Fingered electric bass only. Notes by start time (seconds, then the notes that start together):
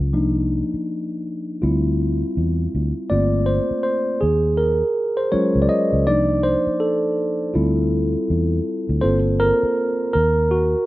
0.00 C#2
0.15 C2
0.74 muted fingered electric bass stroke
1.63 D2
2.37 E2
2.75 D2
3.11 G1
3.71 muted fingered electric bass stroke
4.23 D#2
5.34 muted fingered electric bass stroke
5.55 C#2
5.93 C#2
6.08 C2
6.67 muted fingered electric bass stroke
7.55 D2
8.30 E2
8.89 D2
9.04 G1
9.63 muted fingered electric bass stroke
10.15 D#2